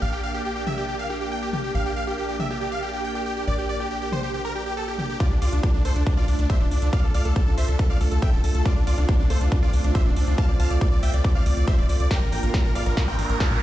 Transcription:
Already playing: A#3 D4 G4
0.02 A#1 F5
0.13 G4
0.23 F5
0.34 G4
0.45 G4
0.56 G4
0.67 E5, mid tom
0.78 G4
0.88 G4
0.99 F5
1.10 G4
1.21 G4
1.32 G5
1.43 G4
1.53 G4, mid tom
1.64 G4
1.75 A#1 F5
1.86 G4
1.96 F5
2.07 G4
2.18 G4
2.29 G4
2.40 E5, mid tom
2.50 G4
2.61 G4
2.72 F5
2.83 G4
2.93 G4
3.04 G5
3.15 G4
3.26 G4
3.37 G4
3.47 A#1 D5
3.58 G4
3.69 D5
3.80 G4
3.91 G4
4.02 G4
4.12 C5, mid tom
4.23 G4
4.34 G4
4.45 A#4
4.55 G4
4.66 G4
4.77 A4
4.88 G4
4.99 G4, mid tom
5.10 G4
5.20 A3 D4 F4 D5, kick, closed hi-hat
5.31 D2 D4
5.42 D2 F4 D5, open hi-hat
5.53 D2 D4, closed hi-hat
5.63 D4, kick, closed hi-hat
5.74 D2 D4
5.85 D2 A4 C5, open hi-hat
5.96 D2 D4, closed hi-hat
6.06 D4, kick, closed hi-hat
6.17 D2 F4 D5
6.28 D2 D4, open hi-hat
6.39 D2 D4, closed hi-hat
6.50 C5 E5, kick, closed hi-hat
6.60 D1 D4
6.71 D2 D4, open hi-hat
6.82 D2 D4, closed hi-hat
6.93 D5 F5, kick, closed hi-hat
7.04 D2 A4
7.14 D2 D5 F5, open hi-hat
7.25 D2 A4, closed hi-hat
7.36 A4, kick, closed hi-hat
7.47 D2 A4
7.57 D2 C5 E5, open hi-hat
7.68 D2 A4, closed hi-hat
7.79 A4, kick, closed hi-hat
7.90 D2 D5 F5
8.01 D2 A4, open hi-hat
8.11 D2 A4, closed hi-hat
8.22 E5 G5, kick, closed hi-hat
8.33 D1 A4
8.44 D2 A4, open hi-hat
8.55 D2 A4, closed hi-hat
8.65 C4 F4 D5, kick, closed hi-hat
8.76 D2 D4
8.87 D2 F4 D5, open hi-hat
8.98 D2 D4, closed hi-hat
9.09 D4, kick, closed hi-hat
9.19 D2 D4
9.30 D2 A4 C5, open hi-hat
9.41 D2 D4, closed hi-hat
9.52 D4, kick, closed hi-hat
9.62 D2 F4 D5
9.73 D2 D4, open hi-hat
9.84 D2 D4, closed hi-hat
9.95 C5 E5, kick, closed hi-hat
10.06 D1 D4
10.16 D2 D4, open hi-hat
10.27 D2 D4, closed hi-hat
10.38 F5 A5, kick, closed hi-hat
10.49 D2 D5
10.60 D2 F5 A5, open hi-hat
10.70 D2 D5, closed hi-hat
10.81 D5, kick, closed hi-hat
10.92 D2 D5
11.03 D2 E5 G5, open hi-hat
11.14 D2 D5, closed hi-hat
11.24 D5, kick, closed hi-hat
11.35 D2 D5 F5
11.46 D2 D5, open hi-hat
11.57 D2 D5, closed hi-hat
11.67 C5 E5, kick, closed hi-hat
11.78 D1 D5
11.89 D2 D5, open hi-hat
12.00 D2 D5, closed hi-hat
12.11 A#3 D4 A#4 G5, kick, snare, closed hi-hat, riser
12.21 A#1 A#4
12.32 A#1 A#4 G5, open hi-hat
12.43 A#1 A#4, closed hi-hat
12.54 A#4, kick, snare, closed hi-hat
12.65 A#1 A#4
12.75 A#1 D5 F5, open hi-hat, mid tom
12.86 A#1 A#4, closed hi-hat
12.97 A#4, kick, snare, closed hi-hat
13.08 A#1 A#4 G5
13.18 A#1 A#4, open hi-hat
13.29 A#1 A#4, closed hi-hat
13.40 F5 A5, kick, snare, closed hi-hat
13.51 A#2 A#4

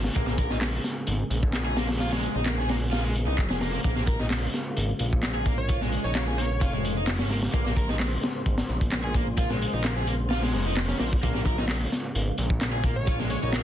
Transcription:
Already playing: C#3 G#3 A#3 F4
0.04 snare, closed hi-hat, open hi-hat
0.15 A#1 A#3 G#4, kick, closed hi-hat
0.27 A#3, snare, closed hi-hat
0.38 A#4, kick, closed hi-hat, open hi-hat
0.50 D#4, snare, closed hi-hat
0.61 snare, clap, closed hi-hat, open hi-hat
0.73 closed hi-hat
0.84 snare, closed hi-hat, open hi-hat
0.96 closed hi-hat
1.07 G#1, closed hi-hat
1.20 closed hi-hat
1.30 A#1, closed hi-hat, open hi-hat
1.43 kick
1.53 snare, clap, closed hi-hat
1.66 G#4, closed hi-hat
1.77 A#3, snare, open hi-hat
1.89 snare, closed hi-hat, open hi-hat
2.00 F4, snare, closed hi-hat, open hi-hat
2.12 G#3, snare, closed hi-hat, open hi-hat
2.23 closed hi-hat, open hi-hat
2.35 A#1 D#4, closed hi-hat
2.46 A#3, snare, clap, closed hi-hat
2.58 G#4, snare, closed hi-hat
2.69 A#3, snare, open hi-hat
2.81 closed hi-hat
2.92 F4, snare, closed hi-hat, open hi-hat
3.04 G#3, closed hi-hat
3.15 closed hi-hat, open hi-hat
3.27 C2 D#4, closed hi-hat
3.38 F1, kick, clap, closed hi-hat
3.50 G#4, snare, closed hi-hat
3.61 A#3, snare, open hi-hat
3.73 A#3, closed hi-hat
3.84 A#1 A#3 F4, kick, closed hi-hat
3.96 A#3, snare, closed hi-hat
4.07 A#4, kick, closed hi-hat, open hi-hat
4.19 D#4, snare, closed hi-hat
4.30 snare, clap, closed hi-hat, open hi-hat
4.43 closed hi-hat
4.54 snare, closed hi-hat, open hi-hat
4.66 closed hi-hat
4.77 G#1, closed hi-hat
4.89 closed hi-hat
4.99 A#1, closed hi-hat, open hi-hat
5.12 kick, closed hi-hat
5.23 snare, clap, closed hi-hat
5.35 G#4, closed hi-hat
5.46 A#3, kick, closed hi-hat, open hi-hat
5.58 C#5, closed hi-hat
5.69 F4, kick, closed hi-hat
5.81 G#3, snare, closed hi-hat
5.92 closed hi-hat, open hi-hat
6.04 A#1 D#4 C#5, closed hi-hat
6.15 A#3 C#5, snare, clap, closed hi-hat
6.27 G#4, snare, closed hi-hat
6.38 A#3 C#5, closed hi-hat, open hi-hat
6.51 closed hi-hat
6.61 F1 F4, kick, closed hi-hat
6.74 G#3, closed hi-hat
6.85 closed hi-hat, open hi-hat
6.97 D#4, closed hi-hat
7.07 snare, clap, closed hi-hat, open hi-hat
7.19 G#1 C#4, snare, closed hi-hat, open hi-hat
7.30 A#3, snare, open hi-hat
7.42 snare, closed hi-hat, open hi-hat
7.54 A#1 A#3 C5, kick, closed hi-hat
7.66 A#3, snare, closed hi-hat
7.77 A#4, kick, closed hi-hat, open hi-hat
7.89 D#4, snare, closed hi-hat
8.00 snare, clap, closed hi-hat, open hi-hat
8.12 closed hi-hat
8.23 snare, closed hi-hat, open hi-hat
8.35 closed hi-hat
8.46 G#1, kick, closed hi-hat
8.58 snare, closed hi-hat
8.69 A#1, open hi-hat
8.81 kick, closed hi-hat
8.92 snare, clap, closed hi-hat
9.04 G#4, closed hi-hat
9.14 A#3, kick, closed hi-hat, open hi-hat
9.27 closed hi-hat
9.37 F4, kick, closed hi-hat
9.50 G#3, snare, closed hi-hat
9.61 closed hi-hat, open hi-hat
9.73 A#1 D#4, closed hi-hat
9.84 A#3, snare, clap, closed hi-hat
9.96 G#4, snare, closed hi-hat
10.07 A#3, closed hi-hat, open hi-hat
10.20 closed hi-hat
10.30 F4, snare, closed hi-hat, open hi-hat
10.42 G#3, snare, closed hi-hat, open hi-hat
10.48 snare, open hi-hat
10.53 F1, snare, open hi-hat
10.66 D#4, closed hi-hat
10.76 snare, clap, closed hi-hat, open hi-hat
10.88 C#4, snare, closed hi-hat, open hi-hat
10.99 A#1 A#3, snare, open hi-hat
11.12 kick, closed hi-hat
11.23 A#1 A#3 F4, kick, closed hi-hat
11.35 A#3, snare, closed hi-hat
11.46 A#4, kick, closed hi-hat, open hi-hat
11.58 D#4, snare, closed hi-hat
11.68 snare, clap, closed hi-hat, open hi-hat
11.81 closed hi-hat
11.92 snare, closed hi-hat, open hi-hat
12.04 closed hi-hat
12.15 G#1, closed hi-hat
12.27 closed hi-hat
12.38 A#1, closed hi-hat, open hi-hat
12.50 kick
12.61 snare, clap, closed hi-hat
12.73 G#4, closed hi-hat
12.84 A#3, kick, closed hi-hat, open hi-hat
12.96 C#5, closed hi-hat
13.07 F4, kick, closed hi-hat
13.19 G#3, snare, closed hi-hat
13.30 C#5, closed hi-hat, open hi-hat
13.42 A#1 D#4 C#5, closed hi-hat
13.53 A#3, snare, clap, closed hi-hat

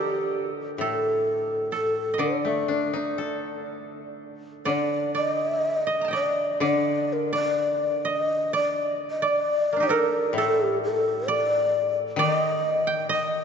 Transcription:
Already playing: D3 G4 A4 A#4 D5 D#5 G5
0.00 G4
0.78 A2 A4
1.71 A4
2.14 D#5
2.18 D3 D5
2.45 A3
2.68 D4
2.93 D#4
3.18 A4
4.65 D3 D5
5.15 D5 D#5
5.32 D#5
5.87 D#5
6.01 A5 A#5
6.08 D#5 G5
6.13 D5
6.60 D3 D5
7.13 A#4
7.33 D5
8.05 D#5
8.53 D5
9.11 D#5
9.22 D5 D#5
9.28 D5
9.73 A#3 D4
9.80 D#4 G4
9.89 A4 A#4
10.33 A2
10.37 A4
10.64 G4
10.84 A4
11.28 D5
12.16 D#3 D5
12.22 D#5
12.34 D#5
12.87 G5
13.09 D#5

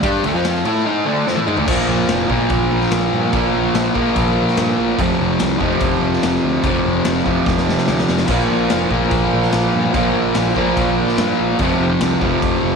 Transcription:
0.03 G2 G3 D4 G4, kick, ride
0.23 D2 D3 A3, ride
0.34 F2 F3 C4 F4
0.45 snare, ride
0.65 A2 A3 E4 A4, ride
0.86 G#3 D#4 G#4
1.05 D3 A3 D4
1.27 F3 C4, snare
1.36 A3 E4, high tom
1.46 G#3 D#4, mid tom
1.56 D3 A3, floor tom
1.66 A#1 A#2 F3 A#3, kick, crash
1.88 A#1
2.08 F1, snare, crash
2.28 A#1 F3 A#3, kick
2.32 A#2
2.50 A#1, kick, crash
2.71 A#1
2.81 snare
2.91 A#1, snare, crash
3.12 G2
3.32 A#1 A#2 F3, kick, crash
3.36 A#3
3.54 A#1
3.73 A#1, snare, crash
3.94 A#1 A#2 F3 A#3, kick
4.16 A#1, kick, crash
4.48 snare
4.57 G2, snare, crash
4.78 A#1
4.97 F1 F2 C3 F3, kick, crash
5.20 F1
5.39 C2, snare, crash
5.59 F1 C3 F3, kick
5.63 F2
5.80 F1, kick, crash
6.02 F1
6.13 snare
6.23 F1, snare, crash
6.44 D2
6.63 F1 F2 C3, kick, crash
6.68 F3
6.86 F1
7.05 F1, snare, crash
7.25 F1 C3 F3, kick
7.29 F2
7.46 F1, kick, snare
7.58 snare
7.69 snare
7.78 snare
7.88 D2, snare
7.99 snare
8.09 F1, snare
8.18 snare
8.27 A#1 A#2 F3 A#3, kick, crash
8.50 A#1
8.70 F1, snare, crash
8.90 A#1 F3 A#3, kick
8.95 A#2
9.11 A#1, kick, crash
9.32 A#1
9.42 snare
9.52 A#1, snare, crash
9.74 G2
9.93 A#1 A#2 F3, kick, crash
9.97 A#3
10.14 A#1
10.35 A#1, snare, crash
10.55 A#1 A#2 F3 A#3, kick
10.77 A#1, kick, crash
11.08 snare
11.18 G2, snare, crash
11.39 A#1
11.59 F1 F2 C3 F3, kick, crash
11.80 F1
12.00 C2, snare, crash
12.20 F1 C3 F3, kick
12.24 F2
12.42 F1, kick, crash
12.63 F1

